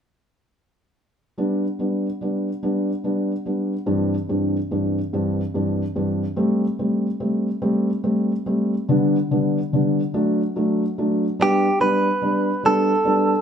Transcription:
1.38 1.64 G3 soft
1.38 1.64 B3 soft
1.38 1.64 D4 medium
1.79 2.06 G3 soft
1.79 2.06 B3 soft
1.79 2.06 D4 soft
2.21 2.48 G3 soft
2.21 2.48 B3 soft
2.21 2.48 D4 soft
2.63 2.89 G3 medium
2.63 2.89 B3 soft
2.63 2.89 D4 medium
3.04 3.31 G3 soft
3.04 3.31 B3 soft
3.04 3.31 D4 soft
3.46 3.72 G3 soft
3.46 3.73 B3 soft
3.46 3.73 D4 soft
3.86 4.14 G2 medium
3.86 4.14 E3 medium
3.86 4.14 C4 soft
3.86 4.14 D4 medium
4.29 4.56 G2 soft
4.29 4.56 E3 soft
4.29 4.56 C4 soft
4.29 4.56 D4 soft
4.71 4.98 G2 soft
4.71 4.98 E3 soft
4.71 4.98 C4 soft
4.71 4.98 D4 soft
5.13 5.40 G2 medium
5.13 5.40 E3 soft
5.13 5.40 C4 medium
5.13 5.40 D4 medium
5.54 5.81 G2 soft
5.54 5.81 E3 soft
5.54 5.81 C4 soft
5.54 5.82 D4 medium
5.96 6.23 G2 soft
5.96 6.23 E3 soft
5.96 6.23 C4 soft
5.96 6.23 D4 medium
6.36 6.64 G3 medium
6.36 6.64 A3 medium
6.36 6.64 C4 medium
6.79 7.06 G3 soft
6.79 7.06 A3 soft
6.79 7.06 C4 soft
7.20 7.48 G3 soft
7.20 7.47 A3 soft
7.20 7.47 C4 medium
7.62 7.89 G3 medium
7.62 7.89 A3 medium
7.62 7.89 C4 medium
8.04 8.31 G3 soft
8.04 8.31 A3 soft
8.04 8.31 C4 medium
8.46 8.73 G3 medium
8.46 8.73 A3 soft
8.46 8.73 C4 medium
8.89 9.15 D3 medium
8.89 9.15 G3 medium
8.89 9.15 B3 medium
8.89 9.15 D4 medium
9.31 9.57 D3 soft
9.31 9.57 G3 soft
9.31 9.57 B3 soft
9.31 9.57 D4 medium
9.73 9.99 D3 soft
9.73 9.99 G3 soft
9.73 9.99 B3 soft
9.73 9.99 D4 medium
10.14 10.40 F#3 medium
10.14 10.40 A3 medium
10.14 10.40 D4 medium
10.56 10.82 F#3 medium
10.56 10.82 A3 soft
10.56 10.82 D4 medium
10.98 11.24 F#3 medium
10.98 11.24 A3 soft
10.98 11.24 D4 medium
11.39 11.65 G3 medium
11.39 11.65 B3 medium
11.39 11.65 D4 medium
11.39 11.81 G4 medium
11.80 12.07 G3 medium
11.80 12.06 B3 soft
11.80 12.07 D4 medium
11.80 12.66 B4 medium
12.22 12.48 G3 soft
12.22 12.48 B3 soft
12.22 12.48 D4 medium
12.63 12.90 G3 medium
12.63 12.90 B3 medium
12.63 12.90 D4 medium
12.63 13.41 A4 medium
13.05 13.31 G3 medium
13.05 13.31 B3 soft
13.05 13.31 D4 medium

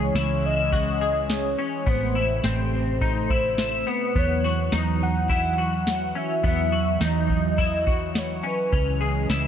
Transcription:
0.00 0.13 C#2 loud
0.00 1.83 E3 medium
0.00 1.85 G#3 medium
0.00 1.85 C#4 medium
0.00 0.15 G#4 medium
0.00 0.47 C#5 loud
0.15 1.54 C#2 loud
0.15 0.72 E4 medium
0.15 snare loud
0.15 ride medium
0.15 tambourine medium
0.44 1.33 D#5 loud
0.44 ride soft
0.72 1.01 F#4 medium
0.72 kick medium
0.72 ride medium
1.01 1.58 G#4 medium
1.01 ride soft
1.29 1.91 C#5 loud
1.29 snare loud
1.29 ride medium
1.29 tambourine medium
1.58 1.86 C#4 medium
1.58 ride soft
1.86 2.41 A1 loud
1.86 4.13 C3 medium
1.86 4.14 A3 medium
1.86 2.15 B3 loud
1.86 2.45 C5 medium
1.86 kick loud
1.86 ride medium
2.15 2.44 E4 medium
2.15 ride soft
2.44 3.83 A1 loud
2.44 3.01 C4 medium
2.44 snare loud
2.44 ride medium
2.44 tambourine medium
2.73 3.91 C5 loud
2.73 ride soft
3.01 3.30 D#4 medium
3.01 kick medium
3.01 ride medium
3.30 3.87 E4 medium
3.30 kick medium
3.30 ride soft
3.58 snare loud
3.58 ride medium
3.58 tambourine medium
3.87 4.15 B3 medium
3.87 4.19 B4 loud
3.87 ride soft
4.15 4.70 E2 loud
4.15 8.69 E3 medium
4.15 8.69 F#3 medium
4.15 4.44 B3 loud
4.15 4.74 C#5 loud
4.15 kick loud
4.15 ride medium
4.44 4.73 F#4 medium
4.44 ride soft
4.72 6.12 E2 loud
4.72 5.30 D#4 medium
4.72 snare loud
4.72 ride medium
4.72 tambourine medium
5.01 5.29 F#5 loud
5.01 ride soft
5.29 5.58 E4 medium
5.29 6.19 F#5 loud
5.29 kick medium
5.29 ride medium
5.58 6.15 F#4 medium
5.58 ride soft
5.87 snare loud
5.87 ride medium
5.87 tambourine medium
6.15 6.43 C#4 medium
6.15 6.45 E5 loud
6.15 ride soft
6.44 6.98 E2 loud
6.44 6.72 B3 loud
6.44 7.06 E5 loud
6.44 kick loud
6.44 ride medium
6.72 7.01 F#4 medium
6.72 ride soft
7.01 8.40 E2 loud
7.01 7.58 D#4 medium
7.01 8.20 D#5 loud
7.01 snare loud
7.01 ride medium
7.01 tambourine medium
7.30 kick medium
7.30 ride soft
7.58 7.86 E4 medium
7.58 kick medium
7.58 ride medium
7.87 8.44 F#4 medium
7.87 kick loud
7.87 ride soft
8.15 8.47 C#5 medium
8.15 snare loud
8.15 ride medium
8.15 tambourine medium
8.43 8.71 C#4 medium
8.43 9.31 B4 medium
8.43 ride soft
8.71 9.27 C#2 loud
8.71 9.47 E3 medium
8.71 9.47 G#3 medium
8.71 9.47 C#4 medium
8.71 9.01 C#4 loud
8.71 kick loud
8.71 ride medium
9.01 9.29 G#4 medium
9.01 ride soft
9.30 9.47 C#2 loud
9.30 9.47 E4 medium
9.30 snare loud
9.30 ride medium
9.30 tambourine medium

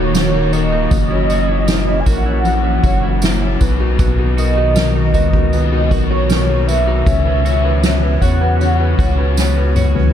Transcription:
0.00 0.87 D#1 loud
0.00 0.88 D#3 medium
0.00 0.99 D#3 medium
0.00 0.14 A#3 medium
0.00 0.35 A#3 medium
0.00 3.56 A#3 medium
0.00 0.33 D#4 medium
0.00 0.15 F#4 medium
0.00 0.53 F#4 medium
0.00 3.57 F#4 loud
0.00 0.49 A#4 medium
0.00 0.54 C#5 medium
0.14 1.14 A#3 medium
0.14 0.90 F#4 medium
0.14 snare loud
0.14 ride medium
0.14 tambourine medium
0.34 0.71 A#3 medium
0.34 0.71 D#4 medium
0.52 1.14 F#4 medium
0.52 0.91 A#4 medium
0.52 2.02 D#5 loud
0.52 ride medium
0.52 tambourine soft
0.72 0.91 A#3 medium
0.72 0.99 D#4 medium
0.91 2.03 F#1 loud
0.91 2.43 F#2 medium
0.91 3.58 E3 medium
0.91 2.44 F#3 medium
0.91 kick loud
0.91 tambourine soft
1.10 1.48 C#4 medium
1.10 1.47 E4 medium
1.29 2.06 F#4 medium
1.29 ride medium
1.29 tambourine medium
1.49 1.86 C#4 medium
1.49 1.86 E4 medium
1.67 3.22 A#3 medium
1.67 3.18 E4 medium
1.67 snare loud
1.67 ride medium
1.67 tambourine medium
1.87 2.24 C#4 medium
1.87 2.25 E4 medium
2.00 2.07 G#5 medium
2.05 2.79 A#1 medium
2.05 2.83 F#4 medium
2.05 3.57 A#4 medium
2.05 3.60 F#5 loud
2.05 kick medium
2.05 ride medium
2.05 tambourine soft
2.26 2.64 C#4 medium
2.26 2.63 E4 medium
2.26 ride soft
2.44 3.60 F#2 medium
2.44 3.57 F#3 medium
2.44 ride medium
2.44 tambourine soft
2.64 3.02 C#4 medium
2.64 3.02 E4 medium
2.83 3.56 F#1 loud
2.83 4.37 F#4 medium
2.83 3.58 C#5 medium
2.83 kick loud
2.83 ride medium
2.83 tambourine soft
3.03 3.41 C#4 medium
3.03 3.40 E4 medium
3.03 ride soft
3.22 4.02 A#3 medium
3.22 3.60 E4 medium
3.22 snare loud
3.22 ride medium
3.22 tambourine medium
3.42 3.60 C#4 medium
3.42 3.68 E4 medium
3.61 5.15 B1 loud
3.61 3.98 B2 medium
3.61 7.03 B2 medium
3.61 7.03 D#3 medium
3.61 3.98 B3 medium
3.61 7.04 A#4 medium
3.61 kick loud
3.61 ride medium
3.61 tambourine medium
3.80 4.17 D#4 medium
3.80 4.17 F#4 medium
3.99 5.52 B2 medium
3.99 5.13 B3 medium
3.99 kick loud
3.99 ride medium
3.99 tambourine medium
4.19 4.56 D#4 medium
4.19 4.56 F#4 medium
4.37 5.14 F#4 medium
4.37 4.74 A#4 medium
4.37 5.11 D#5 medium
4.37 ride medium
4.37 tambourine soft
4.57 4.94 D#4 medium
4.57 4.94 F#4 medium
4.76 6.29 A#3 medium
4.76 5.90 A#4 medium
4.76 snare loud
4.76 ride medium
4.76 tambourine medium
4.95 5.32 D#4 medium
4.95 5.33 F#4 medium
5.14 5.93 C#2 medium
5.14 5.51 B3 medium
5.14 5.91 F#4 medium
5.14 6.06 D#5 loud
5.14 kick medium
5.14 ride medium
5.14 tambourine soft
5.33 5.71 D#4 medium
5.33 5.71 F#4 medium
5.33 kick loud
5.33 ride soft
5.52 7.06 B2 medium
5.52 6.66 B3 medium
5.52 ride medium
5.52 tambourine soft
5.72 6.09 D#4 medium
5.72 6.09 F#4 medium
5.91 7.03 B1 medium
5.91 6.68 F#4 medium
5.91 6.29 A#4 medium
5.91 kick loud
5.91 ride medium
5.91 tambourine soft
6.09 6.48 D#4 medium
6.09 6.48 F#4 medium
6.09 6.68 C#5 medium
6.09 ride soft
6.29 7.14 A#3 medium
6.29 7.04 A#4 medium
6.29 snare loud
6.29 ride medium
6.29 tambourine medium
6.49 6.86 D#4 medium
6.49 6.86 F#4 medium
6.67 7.05 B3 medium
6.67 7.45 F#4 medium
6.67 8.21 E5 loud
6.67 ride medium
6.67 tambourine medium
6.87 7.14 D#4 medium
6.87 7.06 F#4 medium
7.06 8.18 C#2 loud
7.06 8.60 C#3 medium
7.06 10.11 E3 medium
7.06 10.13 B3 medium
7.06 7.43 C#4 medium
7.06 10.11 F#4 medium
7.06 kick loud
7.06 ride medium
7.06 tambourine soft
7.25 7.63 C#4 medium
7.25 7.62 B4 medium
7.44 8.59 C#4 medium
7.44 8.22 F#4 medium
7.44 ride medium
7.44 tambourine medium
7.64 8.02 C#4 medium
7.64 8.01 B4 medium
7.83 9.37 B3 medium
7.83 8.20 C#5 medium
7.83 snare loud
7.83 tambourine medium
8.02 8.40 C#4 medium
8.02 8.40 B4 medium
8.21 8.95 E2 medium
8.21 8.99 F#4 medium
8.21 9.36 C#5 medium
8.21 9.72 F#5 loud
8.21 kick medium
8.21 ride medium
8.21 tambourine soft
8.41 8.79 C#4 medium
8.41 8.78 B4 medium
8.41 ride soft
8.60 10.13 C#3 medium
8.60 8.97 C#4 medium
8.60 ride medium
8.60 tambourine soft
8.80 9.17 C#4 medium
8.80 9.17 B4 medium
8.98 10.10 C#2 loud
8.98 10.11 C#4 medium
8.98 9.76 F#4 medium
8.98 kick loud
8.98 ride medium
8.98 tambourine soft
9.18 9.56 C#4 medium
9.18 9.56 B4 medium
9.37 10.13 B3 medium
9.37 9.75 C#5 medium
9.37 snare medium
9.37 tambourine medium
9.57 9.94 C#4 medium
9.57 9.93 B4 medium
9.76 10.13 F#4 medium
9.76 10.13 C#5 medium
9.76 mid tom medium
9.76 tambourine soft
9.95 10.13 C#4 medium
9.95 10.13 B4 medium
9.95 floor tom medium

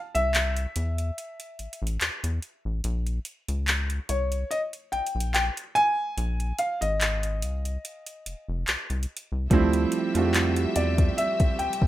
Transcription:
0.15 0.66 C2 loud
0.15 1.77 E5 loud
0.15 closed hi-hat medium
0.34 clap loud
0.34 closed hi-hat medium
0.56 closed hi-hat soft
0.76 1.11 E2 medium
0.76 closed hi-hat medium
0.98 closed hi-hat soft
1.18 closed hi-hat medium
1.40 closed hi-hat soft
1.59 1.68 A1 soft
1.59 closed hi-hat soft
1.73 closed hi-hat medium
1.82 1.98 A1 medium
1.87 closed hi-hat medium
2.01 2.10 E2 soft
2.01 clap loud
2.01 closed hi-hat medium
2.24 2.40 E2 medium
2.24 closed hi-hat medium
2.42 closed hi-hat soft
2.65 2.81 A1 medium
2.84 3.19 A#1 loud
2.84 closed hi-hat medium
3.07 closed hi-hat soft
3.25 closed hi-hat medium
3.48 4.00 C#2 medium
3.48 closed hi-hat medium
3.68 clap loud
3.68 closed hi-hat medium
3.90 closed hi-hat soft
4.09 4.44 C2 medium
4.09 4.52 C#5 medium
4.09 closed hi-hat medium
4.32 closed hi-hat soft
4.51 4.60 D#5 medium
4.51 closed hi-hat medium
4.73 closed hi-hat soft
4.92 5.02 A#1 soft
4.92 5.32 G5 medium
4.92 closed hi-hat soft
5.06 closed hi-hat medium
5.15 5.50 A#1 medium
5.20 closed hi-hat medium
5.34 5.43 G5 loud
5.34 clap loud
5.34 closed hi-hat medium
5.57 closed hi-hat medium
5.75 6.55 G#5 loud
5.75 closed hi-hat soft
6.17 6.53 A#1 loud
6.17 closed hi-hat medium
6.40 closed hi-hat soft
6.59 6.80 F5 medium
6.59 closed hi-hat medium
6.81 7.44 G#1 loud
6.81 8.44 D#5 medium
6.81 closed hi-hat medium
7.01 clap loud
7.01 closed hi-hat medium
7.23 closed hi-hat soft
7.42 7.78 C2 medium
7.42 closed hi-hat medium
7.65 closed hi-hat soft
7.85 closed hi-hat medium
8.06 closed hi-hat soft
8.26 8.35 F1 soft
8.26 closed hi-hat medium
8.48 8.65 F1 medium
8.68 8.77 C2 soft
8.68 clap loud
8.68 closed hi-hat medium
8.90 9.06 C2 medium
8.90 closed hi-hat soft
9.03 closed hi-hat soft
9.17 closed hi-hat medium
9.32 9.48 C2 medium
9.50 9.86 D2 loud
9.50 9.91 F3 loud
9.50 11.87 G3 medium
9.50 9.92 G3 medium
9.50 9.92 A3 medium
9.50 11.87 C4 medium
9.50 9.93 C4 loud
9.50 9.93 E4 loud
9.50 11.87 G4 medium
9.50 11.87 E5 medium
9.50 kick loud
9.50 closed hi-hat medium
9.73 closed hi-hat soft
9.92 closed hi-hat medium
10.14 10.66 F2 medium
10.14 11.22 G3 medium
10.14 11.22 A3 medium
10.14 11.23 C4 medium
10.14 11.21 F4 medium
10.14 10.23 F#4 medium
10.14 closed hi-hat medium
10.25 11.27 G4 medium
10.34 clap loud
10.34 closed hi-hat medium
10.56 closed hi-hat soft
10.76 11.11 E2 medium
10.76 11.19 D5 medium
10.76 closed hi-hat medium
10.98 kick medium
10.98 closed hi-hat soft
11.18 11.60 E5 medium
11.18 closed hi-hat medium
11.40 kick loud
11.40 closed hi-hat soft
11.59 11.68 D2 soft
11.59 11.87 G5 medium
11.59 closed hi-hat soft
11.73 closed hi-hat medium
11.82 11.87 D2 loud
11.82 kick medium

